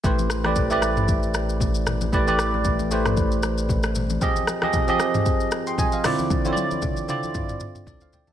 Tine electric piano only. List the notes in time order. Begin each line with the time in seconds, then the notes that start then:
0.04 A3 E4 G4 B4 C5
0.44 A3 E4 G4 B4 D5
0.70 A3 E4 G4 B4 D5
2.13 A3 E4 G4 B4 D5
2.27 A3 E4 G4 B4 D5
2.91 A3 E4 G4 B4 C5
4.21 F3 C4 G4 G#4 D#5
4.62 F3 C4 G4 G#4 D#5
4.88 F3 C4 G4 G#4 D#5
5.67 G5 C6
5.79 D#5 G#5
5.93 C5 F5
6.04 D3 C4 E4 F4 D5
6.44 D3 C4 E4 F4 C#5
6.53 D5
7.08 D3 C4 E4 F4 D5
7.88 A4 D5
8.02 C5 F5
8.14 D5 G5
8.28 E5 A5